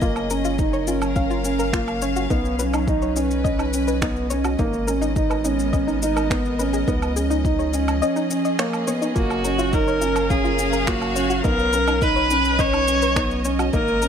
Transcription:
Already playing: string section C#4 G#4 D#5
0.01 analog synth bass F#1, string section F#3, felt piano A#3, synth arpeggio sound F4, kick, shaker
0.16 low woodblock, shaker
0.30 felt piano C#4, synth arpeggio sound A#4, shaker
0.45 synth arpeggio sound F4, shaker
0.58 felt piano D#4, string section A#4, kick, shaker
0.73 synth arpeggio sound C#5, shaker
0.87 felt piano C#4, synth arpeggio sound F4, shaker
1.02 string section F5, low woodblock, shaker
1.16 felt piano C#4, synth arpeggio sound F5, kick, shaker
1.30 synth arpeggio sound F4, shaker
1.44 felt piano C#4, shaker
1.59 synth arpeggio sound A#4, shaker
1.73 felt piano A#3, synth arpeggio sound F4, finger snap, kick, shaker
1.88 low woodblock, shaker
2.01 felt piano C#4, synth arpeggio sound C#5, shaker
2.16 synth arpeggio sound F#4, shaker
2.30 analog synth bass B1, felt piano B3, synth arpeggio sound D#4, kick, shaker
2.45 shaker
2.59 felt piano C#4, synth arpeggio sound B4, shaker
2.74 synth arpeggio sound D#4, low woodblock, shaker
2.88 felt piano D#4, kick, shaker
3.00 string section B4, synth arpeggio sound C#5, shaker
3.16 felt piano C#4, synth arpeggio sound D#4, shaker
3.31 string section D#5, shaker
3.44 felt piano C#4, synth arpeggio sound D#5, kick, shaker
3.59 synth arpeggio sound D#4, low woodblock, shaker
3.73 felt piano C#4, shaker
3.88 synth arpeggio sound B4, shaker
4.02 felt piano B3, synth arpeggio sound D#4, finger snap, kick, shaker
4.16 shaker
4.30 felt piano C#4, synth arpeggio sound C#5, shaker
4.45 synth arpeggio sound F#4, low woodblock, shaker
4.59 analog synth bass G#1, string section G#3, felt piano A#3, synth arpeggio sound D#4, kick, shaker
4.73 shaker
4.87 string section B3, felt piano C#4, synth arpeggio sound A#4, shaker
5.01 synth arpeggio sound D#4, shaker
5.16 felt piano D#4, kick, shaker
5.30 synth arpeggio sound B4, low woodblock, shaker
5.44 felt piano C#4, synth arpeggio sound D#4, shaker
5.51 string section A#4
5.59 shaker
5.73 felt piano C#4, synth arpeggio sound D#5, kick, shaker
5.87 synth arpeggio sound D#4, shaker
6.02 felt piano D#4, shaker
6.16 synth arpeggio sound A#4, low woodblock, shaker
6.30 felt piano B3, synth arpeggio sound D#4, finger snap, kick, shaker
6.45 shaker
6.59 felt piano C#4, synth arpeggio sound B4, shaker
6.73 synth arpeggio sound G#4, shaker
6.87 analog synth bass C#2, string section F3, felt piano B3, synth arpeggio sound D#4, kick, shaker
7.02 low woodblock, shaker
7.08 string section C#4
7.16 felt piano C#4, synth arpeggio sound G#4, shaker
7.30 synth arpeggio sound D#4, shaker
7.45 felt piano D#4, kick, shaker
7.50 string section G#4
7.59 synth arpeggio sound C#5, shaker
7.73 felt piano C#4, synth arpeggio sound D#4, shaker
7.88 low woodblock, shaker
8.02 felt piano C#4, synth arpeggio sound D#5, shaker
8.16 synth arpeggio sound D#4, shaker
8.30 felt piano C#4, shaker
8.45 synth arpeggio sound D#5, shaker
8.59 felt piano A#3, synth arpeggio sound C#5, finger snap, shaker
8.73 low woodblock, shaker
8.87 felt piano B3, synth arpeggio sound C#5, shaker
9.01 synth arpeggio sound D#4, shaker
9.15 analog synth bass F#1, string section F#3, felt piano A#3, synth arpeggio sound F4, viola F#4, kick, shaker
9.30 low woodblock, shaker
9.44 felt piano C#4, synth arpeggio sound A#4, shaker
9.55 synth arpeggio sound F4, string section A#4, shaker
9.73 felt piano D#4, viola A#4, kick, shaker
9.87 synth arpeggio sound C#5, shaker
10.01 felt piano C#4, synth arpeggio sound F4, shaker
10.16 string section F5, low woodblock, shaker
10.30 felt piano C#4, viola G#4, synth arpeggio sound F5, kick, shaker
10.44 synth arpeggio sound F4, shaker
10.59 felt piano C#4, shaker
10.73 synth arpeggio sound A#4, shaker
10.87 felt piano A#3, synth arpeggio sound F4, viola F#4, finger snap, kick, shaker
11.02 low woodblock, shaker
11.16 felt piano C#4, synth arpeggio sound C#5, shaker
11.30 synth arpeggio sound F#4, shaker
11.44 analog synth bass B1, felt piano B3, synth arpeggio sound D#4, viola A#4, kick, shaker
11.59 shaker
11.73 felt piano C#4, synth arpeggio sound B4, string section B4, shaker
11.87 synth arpeggio sound D#4, low woodblock, shaker
12.02 felt piano D#4, viola B4, kick, shaker
12.16 synth arpeggio sound C#5, shaker
12.30 felt piano C#4, synth arpeggio sound D#4, shaker
12.45 string section D#5, shaker
12.58 felt piano C#4, viola C#5, synth arpeggio sound D#5, kick, shaker
12.73 synth arpeggio sound D#4, low woodblock, shaker
12.87 felt piano C#4, shaker
13.02 synth arpeggio sound B4, shaker
13.16 felt piano B3, synth arpeggio sound D#4, finger snap, kick, shaker
13.31 shaker
13.45 felt piano C#4, synth arpeggio sound C#5, shaker
13.59 synth arpeggio sound F#4, low woodblock, shaker
13.73 analog synth bass G#1, string section G#3, felt piano A#3, synth arpeggio sound D#4, viola A#4, kick, shaker
13.88 shaker
13.97 string section B3 A#5
14.02 felt piano C#4, synth arpeggio sound A#4, shaker

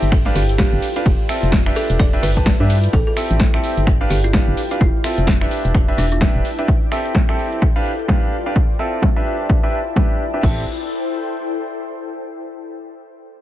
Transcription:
Already playing: grand piano C4 G4 A4 E5, ambient pad E4 A4 G5
0.02 fm bass G1, closed hi-hat, cabasa
0.12 ambient pad F4, finger snap, kick, closed hi-hat, ride, cabasa
0.25 grand piano D4 G4 B4 F5, snare
0.35 fm bass G1, kalimba G4, open hi-hat, ride, cabasa
0.49 closed hi-hat, cabasa
0.55 grand piano D4 G4 B4 F5, kalimba G4, ambient pad D5, kick, snare, closed hi-hat, ride, cabasa
0.73 fm bass G1
0.82 open hi-hat, ride, cabasa
0.96 grand piano D4 G4 B4 F5, closed hi-hat, cabasa
1.06 fm bass F1, kick, closed hi-hat, ride, cabasa
1.29 grand piano C4 F4 A4 E5, finger snap, open hi-hat, ride, cabasa
1.43 fm bass F1, closed hi-hat, cabasa
1.52 kick, snare, closed hi-hat, ride, cabasa
1.66 grand piano D4 G4 B4 E5, finger snap
1.76 kalimba A4, open hi-hat, ride, cabasa
1.90 fm bass E1, ambient pad B4, closed hi-hat, cabasa
1.99 kalimba D5, finger snap, kick, closed hi-hat, ride, cabasa
2.09 ambient pad D5 G5
2.13 grand piano D4 G4 B4 E5
2.23 fm bass G1, kalimba B4, open hi-hat, ride, cabasa
2.37 grand piano D4 G4 B4 A5, kick, closed hi-hat, cabasa
2.46 kick, snare, closed hi-hat, ride, cabasa
2.60 fm bass G2, grand piano D4 G4 B4 E5
2.70 open hi-hat, ride, cabasa
2.84 closed hi-hat, cabasa
2.93 fm bass A1, ambient pad E4, kalimba A4, kick, closed hi-hat, cabasa
3.07 kalimba A4
3.17 grand piano C4 G4 A4 E5, finger snap, open hi-hat, cabasa
3.31 fm bass A1, closed hi-hat, cabasa
3.36 ambient pad A4, kick, snare, closed hi-hat
3.40 cabasa
3.54 grand piano C4 G4 A4 E5, finger snap
3.64 open hi-hat, cabasa
3.77 fm bass G1, closed hi-hat, cabasa
3.87 ambient pad F4, finger snap, kick, closed hi-hat, cabasa
4.01 grand piano D4 G4 B4 F5
4.05 ambient pad B4
4.10 fm bass G1, kalimba G4, open hi-hat, cabasa
4.21 kalimba E4, ambient pad D5, closed hi-hat, cabasa
4.33 grand piano D4 G4 B4 F5, kick, snare, closed hi-hat, cabasa
4.48 fm bass G1
4.57 open hi-hat, cabasa
4.71 grand piano D4 G4 B4 F5, closed hi-hat, cabasa
4.81 fm bass F1, kalimba E4, kick, closed hi-hat, cabasa
5.04 grand piano C4 F4 A4 E5, finger snap, open hi-hat, cabasa
5.14 ambient pad E5 A5
5.18 fm bass F1, closed hi-hat, cabasa
5.27 kick, snare, closed hi-hat, cabasa
5.41 grand piano D4 G4 B4 E5, finger snap
5.51 ambient pad E4, open hi-hat, cabasa
5.65 fm bass E1, closed hi-hat, cabasa
5.75 finger snap, kick, closed hi-hat, cabasa
5.85 grand piano D4 G4 B4 E5, ambient pad B4
5.93 ambient pad G5
5.98 fm bass E1, kalimba D4, open hi-hat, cabasa
6.05 ambient pad D5
6.12 kalimba D4, closed hi-hat, cabasa
6.21 grand piano D4 G4 B4 E5, kick, snare, closed hi-hat, cabasa
6.35 fm bass E1
6.45 open hi-hat, cabasa
6.59 grand piano D4 G4 B4 E5, closed hi-hat, cabasa
6.68 kick, closed hi-hat, cabasa
6.81 ambient pad A4
6.92 grand piano C4 G4 A4 E5, finger snap, open hi-hat, cabasa
7.05 closed hi-hat, cabasa
7.15 kick, snare, closed hi-hat
7.29 grand piano C4 G4 A4 E5, finger snap
7.39 open hi-hat, cabasa
7.52 closed hi-hat, cabasa
7.62 ambient pad F4, finger snap, kick, closed hi-hat
7.76 grand piano D4 G4 B4 F5, ambient pad B4
7.85 open hi-hat, cabasa
7.99 closed hi-hat, cabasa
8.05 ambient pad D5, kick, snare
8.09 grand piano D4 G4 B4 F5
8.32 open hi-hat, cabasa
8.46 grand piano D4 G4 B4 F5, closed hi-hat, cabasa
8.56 kick
8.79 grand piano C4 F4 A4 E5, finger snap, open hi-hat, cabasa
8.89 ambient pad E5 A5
8.93 closed hi-hat, cabasa
9.02 kick, snare
9.16 grand piano D4 G4 B4 E5, finger snap
9.26 ambient pad E4, open hi-hat, cabasa
9.40 cabasa
9.50 finger snap, kick
9.63 grand piano D4 G4 B4 E5
9.73 open hi-hat, cabasa
9.87 cabasa
9.96 grand piano D4 G4 B4 E5, kick, snare
10.20 open hi-hat, cabasa
10.34 grand piano D4 G4 B4 E5, closed hi-hat
10.43 fm bass A1, grand piano C4 G4 A4 E5, ambient pad E4, kick, crash
10.51 ambient pad A4
10.59 ambient pad C5
10.65 ambient pad G5

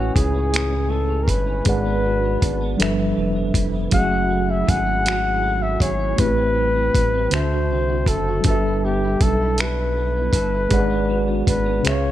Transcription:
Already playing: analog synth bass A1, clean electric guitar A2 G#3 C#4 E4 G#4, tine electric piano C#4 E4 B4 C#5 G#5, flugelhorn F#4
0.15 analog synth bass C#2, clean electric guitar E4, flugelhorn G#4, kick, closed hi-hat
0.34 clean electric guitar C#4
0.52 clean electric guitar A2 E4, closed hi-hat
0.56 finger snap
0.71 clean electric guitar C#4
0.89 clean electric guitar G#3, flugelhorn A4
1.08 clean electric guitar C#4
1.23 flugelhorn A#4
1.27 analog synth bass G1, clean electric guitar E4, flugelhorn B4, kick, closed hi-hat
1.46 clean electric guitar C#4
1.65 analog synth bass G#1, clean electric guitar G#2 D4, tine electric piano G#3 G#4 B4 D5, flugelhorn B4, kick, closed hi-hat
1.69 tine electric piano F#5
1.85 clean electric guitar B3
2.04 clean electric guitar F#3
2.24 clean electric guitar B3
2.41 analog synth bass G#1, clean electric guitar D4, kick, closed hi-hat
2.61 clean electric guitar B3
2.77 analog synth bass G1, clean electric guitar G2 E4, tine electric piano F3 G3 D4 A4 B4, closed hi-hat
2.82 tine electric piano E5, finger snap
2.98 clean electric guitar B3
3.16 analog synth bass F1, clean electric guitar F3
3.35 clean electric guitar B3
3.54 analog synth bass F1, clean electric guitar E4, kick, closed hi-hat
3.73 clean electric guitar B3
3.89 analog synth bass F#1, tine electric piano F#3 C#4, clean electric guitar F#3 G#4, kick, closed hi-hat
3.94 tine electric piano A3 G#4, flugelhorn F#5
3.99 tine electric piano E5
4.11 clean electric guitar E4
4.29 clean electric guitar A3
4.49 clean electric guitar E4, flugelhorn E5
4.66 analog synth bass G#1, clean electric guitar G#4, flugelhorn F#5, kick, closed hi-hat
4.85 clean electric guitar E4
5.06 clean electric guitar F#3 G#4, finger snap, closed hi-hat
5.23 clean electric guitar E4
5.42 clean electric guitar A3
5.61 clean electric guitar E4, flugelhorn E5
5.80 analog synth bass G#1, clean electric guitar G#4, flugelhorn C#5, kick, closed hi-hat
5.99 clean electric guitar E4
6.16 analog synth bass A1, clean electric guitar A2 E4, tine electric piano A3 E4 G4 B4, flugelhorn B4, kick, closed hi-hat
6.21 tine electric piano C4
6.37 clean electric guitar C4
6.55 clean electric guitar G3
6.75 clean electric guitar C4
6.94 analog synth bass A1, clean electric guitar E4, kick, closed hi-hat
7.14 clean electric guitar C4
7.30 analog synth bass D2, tine electric piano D3 D4 F#4 C5, clean electric guitar D3 A4, flugelhorn C5, finger snap, closed hi-hat
7.35 tine electric piano E5
7.52 clean electric guitar F#4
7.71 analog synth bass C2, clean electric guitar C4
7.88 clean electric guitar F#4
8.06 analog synth bass F#1, clean electric guitar A4, flugelhorn A4, kick, closed hi-hat
8.28 clean electric guitar F#4
8.41 tine electric piano G3 D4, clean electric guitar G3, kick, closed hi-hat
8.45 analog synth bass G1, clean electric guitar A4, tine electric piano A4 B4, flugelhorn A4
8.50 tine electric piano E5
8.66 clean electric guitar E4
8.85 clean electric guitar B3, flugelhorn G4
9.04 clean electric guitar E4
9.21 analog synth bass B1, clean electric guitar A4, flugelhorn A4, kick, closed hi-hat
9.42 clean electric guitar E4
9.58 clean electric guitar G3 A4, flugelhorn B4, finger snap, closed hi-hat
9.78 clean electric guitar E4
9.96 clean electric guitar B3
10.16 clean electric guitar E4
10.33 analog synth bass G1, clean electric guitar A4, kick, closed hi-hat
10.54 clean electric guitar E4
10.69 analog synth bass G#1, clean electric guitar G#2, tine electric piano G#3 G#4 A4 D5, kick, closed hi-hat
10.73 clean electric guitar D4, tine electric piano F#5
10.78 tine electric piano B4
10.90 clean electric guitar B3
11.09 clean electric guitar F#3
11.27 clean electric guitar B3
11.47 analog synth bass G#1, clean electric guitar D4, flugelhorn B4, kick, closed hi-hat
11.65 clean electric guitar B3
11.83 analog synth bass C#2, tine electric piano C#3 C#4 G#4 B4, clean electric guitar C#3 F4, closed hi-hat
11.87 flugelhorn C#5, tine electric piano E5, finger snap
11.93 tine electric piano F5
12.05 clean electric guitar B3

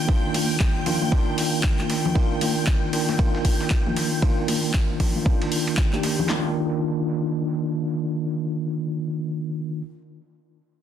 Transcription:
Already playing: string machine G5 G6
0.08 tine electric piano D#3 A#3 D4 F4, kick, ride
0.34 open hi-hat, ride, high conga
0.60 kick, snare, clap, ride
0.86 tine electric piano D#3 A#3 D4 F4, open hi-hat, ride, low conga
1.02 high conga
1.11 tine electric piano D#3 A#3 D4 F4, kick, ride
1.38 snare, open hi-hat
1.63 kick, snare, clap, ride
1.79 clap, high conga
1.90 snare, open hi-hat, ride
2.05 low conga
2.15 tine electric piano D#3 A#3 D4 F4, kick, ride
2.41 open hi-hat, ride, high conga
2.67 kick, snare, clap, ride
2.93 tine electric piano D#3 A#3 D4 F4, open hi-hat, ride
3.09 snare, high conga
3.18 tine electric piano D#3 A#3 D4 F4, kick, ride
3.35 snare
3.45 kick, open hi-hat, ride
3.61 snare
3.70 kick, snare, clap, ride
3.86 high conga, low conga
3.96 snare, open hi-hat, ride
4.22 tine electric piano D#3 A#3 D4 F4, kick, ride
4.48 open hi-hat, ride, high conga
4.73 kick, snare, clap, ride
5.00 tine electric piano D#3 A#3 D4 F4, kick, open hi-hat, ride, low conga
5.16 high conga
5.25 tine electric piano D#3 A#3 D4 F4, kick, ride
5.42 ride
5.52 open hi-hat
5.67 ride
5.77 kick, snare, clap, ride
5.93 tine electric piano D#3 A#3 D4 G4, clap, high conga
6.03 snare, open hi-hat, ride
6.19 low conga
6.28 tine electric piano D#3 A#3 D4 F4, snare, clap

